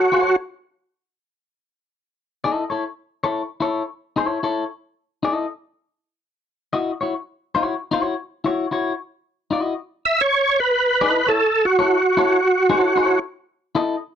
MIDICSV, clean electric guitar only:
0, 0, Header, 1, 2, 480
1, 0, Start_track
1, 0, Tempo, 537153
1, 1077, Time_signature, 4, 2, 24, 8
1, 7317, Tempo, 530035
1, 12716, End_track
2, 0, Start_track
2, 0, Title_t, "Clean electric guitar"
2, 0, Program_c, 0, 27
2, 106, Note_on_c, 0, 66, 88
2, 112, Note_on_c, 0, 69, 74
2, 118, Note_on_c, 0, 73, 90
2, 303, Note_off_c, 0, 66, 0
2, 305, Note_off_c, 0, 69, 0
2, 308, Note_off_c, 0, 73, 0
2, 2182, Note_on_c, 0, 75, 73
2, 2189, Note_on_c, 0, 69, 66
2, 2196, Note_on_c, 0, 64, 66
2, 2350, Note_off_c, 0, 75, 0
2, 2353, Note_off_c, 0, 69, 0
2, 2357, Note_off_c, 0, 64, 0
2, 2412, Note_on_c, 0, 73, 52
2, 2422, Note_on_c, 0, 69, 49
2, 2430, Note_on_c, 0, 64, 41
2, 2525, Note_off_c, 0, 73, 0
2, 2530, Note_off_c, 0, 69, 0
2, 2534, Note_off_c, 0, 64, 0
2, 2891, Note_on_c, 0, 73, 73
2, 2897, Note_on_c, 0, 69, 72
2, 2907, Note_on_c, 0, 64, 59
2, 3048, Note_off_c, 0, 73, 0
2, 3051, Note_off_c, 0, 69, 0
2, 3056, Note_off_c, 0, 64, 0
2, 3221, Note_on_c, 0, 64, 76
2, 3232, Note_on_c, 0, 69, 73
2, 3237, Note_on_c, 0, 73, 75
2, 3411, Note_off_c, 0, 64, 0
2, 3417, Note_off_c, 0, 69, 0
2, 3419, Note_off_c, 0, 73, 0
2, 3719, Note_on_c, 0, 64, 67
2, 3727, Note_on_c, 0, 69, 68
2, 3734, Note_on_c, 0, 73, 83
2, 3913, Note_off_c, 0, 64, 0
2, 3916, Note_off_c, 0, 69, 0
2, 3920, Note_off_c, 0, 73, 0
2, 3959, Note_on_c, 0, 64, 84
2, 3965, Note_on_c, 0, 69, 85
2, 3967, Note_on_c, 0, 73, 75
2, 4141, Note_off_c, 0, 64, 0
2, 4144, Note_off_c, 0, 69, 0
2, 4145, Note_off_c, 0, 73, 0
2, 4673, Note_on_c, 0, 64, 64
2, 4686, Note_on_c, 0, 69, 69
2, 4689, Note_on_c, 0, 75, 81
2, 4870, Note_off_c, 0, 64, 0
2, 4877, Note_off_c, 0, 69, 0
2, 4878, Note_off_c, 0, 75, 0
2, 6014, Note_on_c, 0, 75, 75
2, 6019, Note_on_c, 0, 66, 76
2, 6027, Note_on_c, 0, 64, 56
2, 6170, Note_off_c, 0, 75, 0
2, 6173, Note_off_c, 0, 66, 0
2, 6177, Note_off_c, 0, 64, 0
2, 6262, Note_on_c, 0, 73, 57
2, 6270, Note_on_c, 0, 66, 50
2, 6279, Note_on_c, 0, 64, 47
2, 6371, Note_off_c, 0, 73, 0
2, 6375, Note_off_c, 0, 66, 0
2, 6380, Note_off_c, 0, 64, 0
2, 6744, Note_on_c, 0, 73, 73
2, 6753, Note_on_c, 0, 66, 73
2, 6754, Note_on_c, 0, 64, 66
2, 6911, Note_off_c, 0, 73, 0
2, 6916, Note_off_c, 0, 64, 0
2, 6916, Note_off_c, 0, 66, 0
2, 7072, Note_on_c, 0, 64, 78
2, 7083, Note_on_c, 0, 66, 90
2, 7090, Note_on_c, 0, 73, 83
2, 7266, Note_off_c, 0, 64, 0
2, 7272, Note_off_c, 0, 66, 0
2, 7276, Note_off_c, 0, 73, 0
2, 7549, Note_on_c, 0, 64, 74
2, 7561, Note_on_c, 0, 73, 76
2, 7563, Note_on_c, 0, 66, 78
2, 7736, Note_off_c, 0, 64, 0
2, 7742, Note_off_c, 0, 73, 0
2, 7743, Note_off_c, 0, 66, 0
2, 7792, Note_on_c, 0, 64, 72
2, 7799, Note_on_c, 0, 66, 73
2, 7805, Note_on_c, 0, 73, 72
2, 7979, Note_off_c, 0, 64, 0
2, 7982, Note_off_c, 0, 66, 0
2, 7985, Note_off_c, 0, 73, 0
2, 8511, Note_on_c, 0, 64, 58
2, 8521, Note_on_c, 0, 66, 59
2, 8530, Note_on_c, 0, 75, 67
2, 8711, Note_off_c, 0, 64, 0
2, 8715, Note_off_c, 0, 66, 0
2, 8720, Note_off_c, 0, 75, 0
2, 9875, Note_on_c, 0, 75, 92
2, 9879, Note_on_c, 0, 69, 76
2, 9890, Note_on_c, 0, 64, 69
2, 10040, Note_off_c, 0, 75, 0
2, 10042, Note_off_c, 0, 69, 0
2, 10047, Note_off_c, 0, 64, 0
2, 10105, Note_on_c, 0, 73, 55
2, 10116, Note_on_c, 0, 69, 53
2, 10123, Note_on_c, 0, 64, 46
2, 10215, Note_off_c, 0, 73, 0
2, 10220, Note_off_c, 0, 69, 0
2, 10224, Note_off_c, 0, 64, 0
2, 10577, Note_on_c, 0, 73, 82
2, 10586, Note_on_c, 0, 69, 75
2, 10599, Note_on_c, 0, 64, 67
2, 10733, Note_off_c, 0, 73, 0
2, 10737, Note_off_c, 0, 69, 0
2, 10744, Note_off_c, 0, 64, 0
2, 10924, Note_on_c, 0, 64, 86
2, 10934, Note_on_c, 0, 69, 102
2, 10938, Note_on_c, 0, 73, 106
2, 11104, Note_off_c, 0, 64, 0
2, 11109, Note_off_c, 0, 69, 0
2, 11111, Note_off_c, 0, 73, 0
2, 11399, Note_on_c, 0, 64, 81
2, 11400, Note_on_c, 0, 69, 92
2, 11410, Note_on_c, 0, 73, 104
2, 11592, Note_off_c, 0, 64, 0
2, 11592, Note_off_c, 0, 69, 0
2, 11597, Note_off_c, 0, 73, 0
2, 11636, Note_on_c, 0, 64, 71
2, 11646, Note_on_c, 0, 69, 73
2, 11650, Note_on_c, 0, 73, 103
2, 11830, Note_off_c, 0, 64, 0
2, 11834, Note_off_c, 0, 69, 0
2, 11836, Note_off_c, 0, 73, 0
2, 12355, Note_on_c, 0, 64, 88
2, 12362, Note_on_c, 0, 69, 88
2, 12367, Note_on_c, 0, 75, 85
2, 12536, Note_off_c, 0, 64, 0
2, 12540, Note_off_c, 0, 69, 0
2, 12542, Note_off_c, 0, 75, 0
2, 12716, End_track
0, 0, End_of_file